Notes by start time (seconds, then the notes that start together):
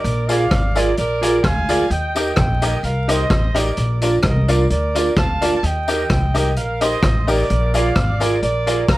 Already playing: A#4 D5
0.04 A#1, closed hi-hat
0.29 F4 G#4 A#4 D5 F5, closed hi-hat, tambourine
0.51 G#1, kick, cross-stick, closed hi-hat
0.75 F4 G#4 A#4 D5, closed hi-hat, tambourine
0.97 A#1 A#4 D5, closed hi-hat
1.21 F4 G#4 A#4 D5, closed hi-hat, tambourine
1.44 D2 F5 G#5, kick, cross-stick, closed hi-hat
1.69 F4 G#4 A#4 D5, closed hi-hat, tambourine
1.90 D#2 D#5 G5, closed hi-hat
2.15 D#4 G4 A#4 D#5, closed hi-hat, tambourine
2.36 A#1 D#5 G5, kick, cross-stick, closed hi-hat
2.62 D#4 G4 A#4 D#5, closed hi-hat, tambourine
2.83 C2 A#4 F5, closed hi-hat
3.08 D#4 G4 A#4 C5 D#5, closed hi-hat, tambourine
3.30 A1, kick, cross-stick, closed hi-hat
3.54 D#4 G4 A#4 D5 D#5, closed hi-hat, tambourine
3.77 A#1, closed hi-hat
4.01 D4 F4 A#4 D5, closed hi-hat, tambourine
4.23 C2 A#4 D#5, kick, cross-stick, closed hi-hat
4.48 D4 F4 A#4 D5, closed hi-hat, tambourine
4.70 D2 A#4 D5, closed hi-hat
4.95 D4 F4 A#4 D5, closed hi-hat, tambourine
5.17 D2 F5 A5, kick, cross-stick, closed hi-hat
5.41 D4 F4 A#4 D5, closed hi-hat, tambourine
5.57 A5
5.63 D#2 D#5 G5, closed hi-hat
5.88 D#4 G4 A#4 D#5, closed hi-hat, tambourine
6.10 C2 D#5 G5, kick, cross-stick, closed hi-hat
6.34 D#4 G4 A#4 D#5, closed hi-hat, tambourine
6.56 A#1 A#4 F5, closed hi-hat
6.81 D#4 G4 A#4 C5 D#5, closed hi-hat, tambourine
7.03 A1, kick, cross-stick, closed hi-hat
7.27 D#4 G4 A#4 D5 D#5, open hi-hat, tambourine
7.50 A#1, closed hi-hat
7.74 F4 G#4 A#4 D5 F5, closed hi-hat, tambourine
7.96 G#1, kick, cross-stick, closed hi-hat
8.20 F4 G#4 A#4 D5, closed hi-hat, tambourine
8.42 A#1 A#4 D5, closed hi-hat
8.67 F4 G#4 A#4 D5, closed hi-hat, tambourine
8.88 D2 F5 A#5, kick, cross-stick, closed hi-hat